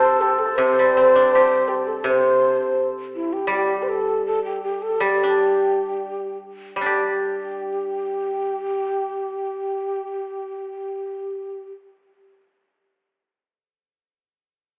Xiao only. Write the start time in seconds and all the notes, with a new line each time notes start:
Already playing: C5
0.21 G4
0.39 A4
0.56 C5
1.69 G4
1.88 A4
2.06 C5
3.16 E4
3.33 G4
3.50 G4
3.83 C5
3.89 A4
4.26 A4
4.44 G4
4.63 G4
4.82 A4
5.03 G4
6.87 G4